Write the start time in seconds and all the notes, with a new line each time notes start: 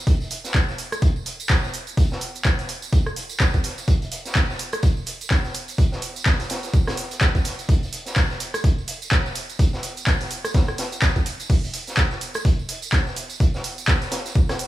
0.07 kick, closed hi-hat, tambourine, shaker
0.20 closed hi-hat, tambourine
0.31 closed hi-hat, open hi-hat, shaker
0.44 snare, tambourine, shaker
0.54 kick, snare, clap, closed hi-hat, shaker
0.68 snare, tambourine
0.78 closed hi-hat, open hi-hat, shaker
0.92 cross-stick, tambourine, shaker
1.02 kick, closed hi-hat, tambourine, shaker
1.16 tambourine
1.26 closed hi-hat, open hi-hat, shaker
1.40 tambourine, shaker
1.50 kick, snare, clap, closed hi-hat, shaker
1.63 snare, tambourine
1.74 closed hi-hat, open hi-hat, shaker
1.87 tambourine, shaker
1.97 kick, closed hi-hat, tambourine, shaker
2.11 snare, tambourine
2.21 closed hi-hat, open hi-hat, shaker
2.35 tambourine, shaker
2.44 kick, snare, clap, closed hi-hat, tambourine, shaker
2.59 snare, open hi-hat, tambourine
2.69 closed hi-hat, open hi-hat, shaker
2.82 tambourine, shaker
2.92 kick, closed hi-hat, tambourine, shaker
3.06 cross-stick, tambourine
3.16 closed hi-hat, open hi-hat, shaker
3.29 tambourine, shaker
3.40 kick, snare, clap, closed hi-hat, shaker
3.54 kick, closed hi-hat, tambourine
3.64 snare, closed hi-hat, open hi-hat, shaker
3.78 closed hi-hat, tambourine, shaker
3.88 kick, closed hi-hat, tambourine, shaker
4.02 closed hi-hat, tambourine
4.12 closed hi-hat, open hi-hat, ride, shaker
4.25 snare, tambourine, shaker
4.35 kick, snare, clap, closed hi-hat, tambourine, shaker
4.50 snare, tambourine
4.59 closed hi-hat, open hi-hat, ride, shaker
4.73 cross-stick, tambourine, shaker
4.83 kick, closed hi-hat, tambourine, shaker
4.97 tambourine
5.06 closed hi-hat, open hi-hat, ride, shaker
5.21 tambourine, shaker
5.30 kick, snare, clap, closed hi-hat, shaker
5.45 snare, tambourine
5.54 closed hi-hat, open hi-hat, ride, shaker
5.68 tambourine, shaker
5.78 kick, closed hi-hat, tambourine, shaker
5.92 snare, tambourine
6.02 closed hi-hat, open hi-hat, ride, shaker
6.16 tambourine, shaker
6.25 kick, snare, clap, closed hi-hat, shaker
6.40 snare, open hi-hat, tambourine
6.50 snare, closed hi-hat, open hi-hat, ride, shaker
6.63 snare, tambourine, shaker
6.73 kick, closed hi-hat, tambourine, shaker
6.87 cross-stick, snare, closed hi-hat, tambourine
6.97 snare, open hi-hat, ride, shaker
7.11 closed hi-hat, tambourine, shaker
7.21 kick, snare, clap, closed hi-hat, tambourine, shaker
7.35 kick, closed hi-hat, tambourine
7.44 snare, closed hi-hat, open hi-hat, ride, shaker
7.59 closed hi-hat, tambourine, shaker
7.69 kick, closed hi-hat, tambourine, shaker
7.83 closed hi-hat, tambourine
7.93 closed hi-hat, open hi-hat, ride, shaker
8.06 snare, tambourine, shaker
8.16 kick, snare, clap, closed hi-hat, tambourine, shaker
8.30 snare, tambourine
8.40 closed hi-hat, open hi-hat, ride, shaker
8.54 cross-stick, tambourine, shaker
8.64 kick, closed hi-hat, shaker
8.78 tambourine
8.88 closed hi-hat, open hi-hat, ride, shaker
9.02 tambourine, shaker
9.11 kick, snare, clap, closed hi-hat, shaker
9.25 snare, tambourine
9.35 closed hi-hat, open hi-hat, ride, shaker
9.49 tambourine, shaker
9.59 kick, closed hi-hat, tambourine, shaker
9.73 snare, tambourine
9.83 closed hi-hat, open hi-hat, ride, shaker
9.97 tambourine, shaker
10.07 kick, snare, clap, closed hi-hat, tambourine, shaker
10.20 snare, open hi-hat, tambourine
10.31 closed hi-hat, open hi-hat, ride, shaker
10.45 cross-stick, tambourine, shaker
10.54 kick, snare, closed hi-hat, tambourine, shaker
10.68 cross-stick, tambourine
10.78 snare, closed hi-hat, open hi-hat, ride, shaker
10.92 tambourine, shaker
11.02 kick, snare, clap, closed hi-hat, tambourine, shaker
11.16 kick, closed hi-hat, tambourine
11.26 closed hi-hat, open hi-hat, ride, shaker
11.40 closed hi-hat, tambourine, shaker
11.50 kick, closed hi-hat, crash, shaker
11.64 closed hi-hat, tambourine
11.74 closed hi-hat, open hi-hat, ride, shaker
11.87 snare, tambourine, shaker
11.97 kick, snare, clap, closed hi-hat, shaker
12.11 snare, tambourine
12.21 closed hi-hat, open hi-hat, ride, shaker
12.34 cross-stick, tambourine, shaker
12.45 kick, closed hi-hat, tambourine, shaker
12.59 tambourine
12.69 closed hi-hat, open hi-hat, ride, shaker
12.82 tambourine, shaker
12.92 kick, snare, clap, closed hi-hat, shaker
13.07 snare, tambourine
13.16 closed hi-hat, open hi-hat, ride, shaker
13.30 tambourine, shaker
13.40 kick, closed hi-hat, tambourine, shaker
13.54 snare, tambourine
13.64 closed hi-hat, open hi-hat, ride, shaker
13.78 tambourine, shaker
13.88 kick, snare, clap, closed hi-hat, tambourine, shaker
14.02 snare, open hi-hat, tambourine
14.12 snare, closed hi-hat, open hi-hat, ride, shaker
14.25 snare, tambourine, shaker
14.35 kick, closed hi-hat, tambourine, shaker
14.49 cross-stick, snare, closed hi-hat, tambourine
14.59 snare, open hi-hat, ride, shaker